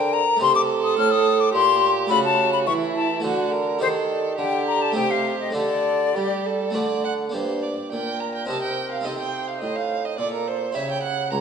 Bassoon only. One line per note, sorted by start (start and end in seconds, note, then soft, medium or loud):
0.00 0.22 D3 medium
0.41 0.94 C3 medium
0.98 1.53 A2 medium
1.54 2.10 A#2 medium
2.11 2.69 C#3 medium
2.67 3.23 E3 medium
3.24 3.80 D3 medium
3.81 4.37 D#3 medium
4.38 4.95 D3 medium
4.95 5.54 C3 medium
5.54 6.17 D3 medium
6.15 6.76 G3 medium
6.75 7.33 D3 medium
7.34 7.76 G2 medium
7.92 8.48 A#2 medium
8.49 9.05 C3 medium
9.05 9.61 C3 medium
9.63 10.18 A2 medium
10.19 10.76 A#2 medium
10.75 11.31 C#3 medium
11.31 11.41 C#2 medium